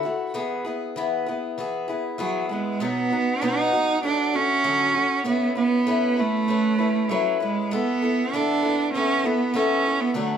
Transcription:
0.03 0.34 A3 soft
0.03 0.33 E4 soft
0.03 0.34 F#4 medium
0.34 0.64 E3 medium
0.34 0.65 B3 medium
0.34 0.65 E4 medium
0.34 0.63 G#4 medium
0.65 0.96 B3 soft
0.65 0.96 E4 soft
0.65 0.95 G#4 medium
0.96 1.26 E3 medium
0.96 1.27 B3 medium
0.96 1.27 E4 medium
0.96 1.25 G#4 medium
1.26 1.57 B3 soft
1.26 1.58 E4 soft
1.26 1.57 G#4 soft
1.58 1.88 E3 medium
1.58 1.88 B3 medium
1.58 1.88 E4 medium
1.58 1.87 G#4 medium
1.88 2.18 B3 soft
1.88 2.19 E4 soft
1.88 2.18 G#4 medium
2.18 2.49 E3 medium
2.18 2.47 F#3 medium
2.18 2.49 B3 medium
2.18 2.50 E4 medium
2.18 2.48 G#4 medium
2.49 2.84 G#3 medium
2.49 2.80 B3 soft
2.49 2.81 E4 soft
2.49 2.80 G#4 medium
2.80 3.10 B2 medium
2.80 3.11 F#3 medium
2.80 3.11 B3 medium
2.80 3.45 B3 medium
2.80 3.11 D#4 medium
2.80 3.09 F#4 medium
3.10 3.41 B3 soft
3.10 3.41 D#4 soft
3.10 3.41 F#4 soft
3.41 3.72 B2 medium
3.41 3.72 F#3 medium
3.41 3.72 B3 medium
3.41 3.72 D#4 medium
3.41 4.04 D#4 loud
3.41 3.71 F#4 medium
3.72 4.04 B3 soft
3.72 4.03 D#4 soft
3.72 4.02 F#4 soft
4.03 4.33 F#3 medium
4.03 4.34 A3 medium
4.03 4.34 D4 medium
4.03 4.37 D4 medium
4.03 4.32 F#4 medium
4.34 4.63 A3 soft
4.34 5.26 C#4 loud
4.34 4.64 F#4 soft
4.64 4.94 D3 medium
4.64 4.95 F#3 medium
4.64 4.95 A3 medium
4.64 4.93 F#4 medium
4.94 5.23 A3 soft
4.94 5.25 F#4 soft
5.24 5.55 A3 medium
5.24 5.55 B3 medium
5.24 5.56 C#4 medium
5.24 5.55 E4 medium
5.24 5.54 B4 medium
5.55 6.22 B3 medium
5.55 5.86 C#4 soft
5.55 5.87 E4 soft
5.55 5.86 B4 medium
5.87 6.17 A3 medium
5.87 6.17 C#4 medium
5.87 6.18 E4 medium
5.87 6.15 B4 medium
6.17 7.12 A3 medium
6.17 6.48 C#4 soft
6.17 6.49 E4 soft
6.17 6.47 B4 soft
6.48 6.78 A3 medium
6.48 6.79 C#4 medium
6.48 6.78 E4 medium
6.48 6.77 B4 medium
6.78 7.10 C#4 soft
6.78 7.10 E4 soft
6.78 7.09 B4 soft
7.09 7.41 F#3 medium
7.09 7.40 A3 medium
7.09 7.41 C#4 medium
7.09 7.41 E4 medium
7.09 7.39 B4 medium
7.40 7.71 C#4 soft
7.40 7.71 E4 soft
7.40 7.71 B4 soft
7.45 7.77 G#3 medium
7.71 8.01 E3 medium
7.71 8.02 B3 medium
7.71 8.02 E4 medium
7.71 8.01 A4 medium
7.76 8.36 B3 medium
8.02 8.33 B3 soft
8.02 8.33 E4 soft
8.02 8.32 A4 medium
8.33 8.63 E3 medium
8.33 8.63 B3 medium
8.33 8.94 D4 medium
8.33 8.63 E4 medium
8.33 8.61 A4 medium
8.63 8.94 B3 soft
8.63 8.94 E4 soft
8.63 8.93 A4 medium
8.94 9.24 E3 medium
8.94 9.25 B3 medium
8.94 9.27 C#4 medium
8.94 9.24 E4 medium
8.94 9.23 A4 medium
9.24 9.57 B3 medium
9.24 9.53 B3 soft
9.24 9.54 E4 soft
9.24 9.54 A4 soft
9.54 9.85 E3 medium
9.54 9.85 B3 medium
9.54 10.02 C#4 medium
9.54 9.85 E4 medium
9.54 9.85 A4 medium
9.86 10.15 B3 soft
9.86 10.15 E4 soft
9.86 10.16 A4 soft
10.01 10.16 B3 medium
10.14 10.38 D3 medium
10.14 10.38 F#3 medium
10.14 10.38 A3 medium
10.14 10.38 D4 medium
10.14 10.38 F#4 medium

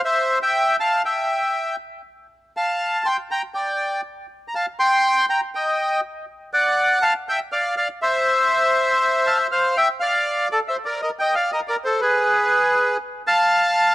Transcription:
0.05 0.39 C5 medium
0.05 0.39 E5 medium
0.42 0.76 E5 medium
0.42 0.76 G5 loud
0.80 1.02 F5 medium
0.80 1.02 A5 medium
1.05 1.76 E5 medium
1.05 1.76 G5 medium
2.57 3.02 F5 medium
2.57 3.07 A5 medium
3.05 3.17 G5 medium
3.05 3.17 C6 medium
3.31 3.42 G5 medium
3.31 3.42 A#5 medium
3.54 4.01 D5 medium
3.54 4.01 G5 medium
4.48 4.54 A#5 medium
4.55 4.66 F5 medium
4.55 4.66 A5 medium
4.79 5.26 G5 medium
4.79 5.26 C6 loud
5.29 5.41 G5 medium
5.29 5.41 A#5 medium
5.55 6.01 D#5 medium
5.55 6.00 G5 medium
6.53 6.99 D5 medium
6.53 7.04 F#5 loud
7.02 7.14 F5 medium
7.02 7.13 A5 loud
7.29 7.40 E5 medium
7.29 7.40 G5 loud
7.52 7.75 D5 medium
7.52 7.75 F5 medium
7.77 7.88 D5 medium
7.77 7.88 F5 medium
8.02 9.47 C5 medium
8.02 9.47 E5 loud
9.26 9.38 F5 medium
9.26 9.38 A5 loud
9.52 9.75 C5 medium
9.52 9.77 F5 medium
9.77 9.89 E5 medium
9.77 9.88 G5 loud
10.00 10.49 D5 medium
10.00 10.48 F5 loud
10.51 10.60 A4 medium
10.51 10.59 D5 medium
10.68 10.77 C5 medium
10.68 10.76 E5 medium
10.85 11.01 A#4 medium
10.85 11.00 D5 medium
11.02 11.11 A#4 medium
11.02 11.09 D#5 medium
11.19 11.35 D#5 medium
11.19 11.34 G5 loud
11.35 11.51 D5 medium
11.35 11.51 F5 medium
11.52 11.61 A#4 medium
11.52 11.59 D#5 medium
11.68 11.77 A#4 medium
11.68 11.75 D5 medium
11.84 12.01 A4 medium
11.84 12.00 C5 medium
12.01 12.97 G#4 medium
12.01 12.97 B4 medium
13.27 13.95 F5 loud
13.27 13.95 A5 loud

